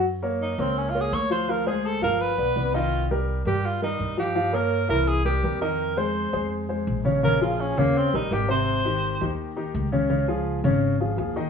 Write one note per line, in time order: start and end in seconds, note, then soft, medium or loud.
0.00 0.53 F#2 medium
0.23 0.52 A#3 medium
0.23 0.52 A#4 medium
0.23 0.52 C#5 medium
0.42 0.61 D#4 medium
0.58 1.09 C#2 medium
0.58 0.88 A#3 medium
0.58 0.80 C4 medium
0.58 0.88 A#4 medium
0.58 0.88 C#5 medium
0.78 0.91 C#4 medium
0.90 1.03 F4 medium
0.95 1.24 A#3 medium
0.95 1.24 A#4 medium
0.95 1.24 C#5 medium
1.01 1.15 G#4 medium
1.12 1.96 D2 medium
1.12 1.31 C#5 loud
1.30 1.45 F3 medium
1.30 1.45 F4 medium
1.30 1.52 C5 medium
1.30 1.45 F5 medium
1.48 1.63 F3 medium
1.48 1.63 F4 medium
1.48 1.67 A#4 medium
1.48 1.63 F5 medium
1.66 1.96 G#3 medium
1.66 1.96 G#4 medium
1.66 1.87 G#4 medium
1.66 1.96 C5 medium
1.86 2.03 A4 medium
2.02 2.36 G1 medium
2.02 2.32 F3 medium
2.02 2.32 F4 medium
2.02 2.23 A#4 loud
2.02 2.32 F5 medium
2.21 2.75 B4 loud
2.38 2.55 B1 medium
2.38 2.53 B3 medium
2.38 2.53 B4 medium
2.38 2.53 D5 medium
2.56 3.40 C2 medium
2.56 2.71 B3 medium
2.56 2.71 B4 medium
2.56 2.71 D5 medium
2.74 3.04 D#3 medium
2.74 3.04 D#4 medium
2.74 3.08 F4 medium
2.74 3.04 D#5 medium
3.11 3.40 G3 medium
3.11 3.40 G4 medium
3.11 3.40 A#4 medium
3.45 3.96 G2 medium
3.45 3.75 G3 medium
3.45 3.76 G4 medium
3.45 3.67 G4 medium
3.45 3.76 A#4 medium
3.65 3.83 F4 medium
3.82 4.11 G3 medium
3.82 4.16 D#4 loud
3.82 4.12 G4 medium
3.82 4.12 A#4 medium
3.99 4.84 G2 loud
4.17 4.32 F3 medium
4.17 4.32 F4 medium
4.17 4.56 G4 medium
4.17 4.33 F5 medium
4.35 4.50 F3 medium
4.35 4.50 F4 medium
4.35 4.51 F5 medium
4.53 4.83 A#3 medium
4.53 4.83 A#4 medium
4.53 4.89 A#4 medium
4.53 4.83 C#5 medium
4.89 5.40 C2 loud
4.89 5.19 E3 medium
4.89 5.19 E4 medium
4.89 5.09 A#4 loud
4.89 5.19 E5 medium
5.08 5.25 G#4 loud
5.25 5.40 G3 medium
5.25 5.40 G4 medium
5.25 5.59 G4 medium
5.25 5.40 A#4 medium
5.43 6.28 F2 medium
5.43 5.58 G3 medium
5.43 5.58 G4 medium
5.43 5.59 A#4 medium
5.61 5.91 D#3 medium
5.61 5.91 D#4 medium
5.61 5.99 A#4 medium
5.61 5.91 D#5 medium
5.97 6.27 G#3 medium
5.97 6.27 G#4 medium
5.97 6.27 C5 medium
5.97 6.52 C5 medium
6.33 6.83 F2 medium
6.33 6.63 G#3 medium
6.33 6.63 G#4 medium
6.33 6.63 C5 medium
6.69 6.99 G#3 medium
6.69 6.99 G#4 medium
6.69 6.99 C5 medium
6.87 7.71 A#1 loud
7.05 7.20 C#3 medium
7.05 7.20 C#4 medium
7.05 7.20 C#5 medium
7.23 7.38 C#3 medium
7.23 7.38 C#4 medium
7.23 7.41 A#4 loud
7.23 7.38 C#5 medium
7.41 7.71 F3 medium
7.41 7.71 F4 medium
7.41 7.62 F4 medium
7.41 7.71 G#4 medium
7.60 7.80 C#4 medium
7.77 8.11 D#2 medium
7.77 8.07 C#3 medium
7.77 7.99 A#3 medium
7.77 8.07 C#4 medium
7.77 8.07 C#5 medium
7.97 8.17 C4 loud
8.13 8.30 A#1 medium
8.13 8.28 G3 medium
8.13 8.35 D#4 loud
8.13 8.28 G4 medium
8.13 8.28 A#4 medium
8.31 9.15 G#1 loud
8.31 8.46 G3 medium
8.31 8.46 G4 medium
8.31 8.50 G4 medium
8.31 8.46 A#4 medium
8.48 8.78 C3 medium
8.48 8.79 C4 medium
8.48 8.78 C5 medium
8.48 9.36 C5 loud
8.85 9.15 D#3 medium
8.85 9.15 D#4 medium
8.85 9.15 G4 medium
9.21 9.71 D#2 medium
9.21 9.51 D#3 medium
9.21 9.51 D#4 medium
9.21 9.51 G4 medium
9.56 9.86 D#3 medium
9.56 9.86 D#4 medium
9.56 9.87 G4 medium
9.74 10.59 C#2 loud
9.92 10.07 C#3 medium
9.92 10.07 C#4 medium
9.92 10.08 C#5 medium
10.10 10.25 C#3 medium
10.10 10.25 C#4 medium
10.10 10.25 C#5 medium
10.28 10.58 F3 medium
10.28 10.58 F4 medium
10.28 10.58 G#4 medium
10.64 11.14 G#1 loud
10.64 10.94 C#3 medium
10.64 10.94 C#4 medium
10.64 10.94 C#5 medium
11.00 11.15 F3 medium
11.00 11.15 F4 medium
11.00 11.15 G#4 medium
11.18 11.50 D#2 loud
11.18 11.33 F3 medium
11.18 11.33 F4 medium
11.18 11.34 G#4 medium
11.36 11.50 D#3 medium
11.36 11.50 D#4 medium
11.36 11.50 D#5 medium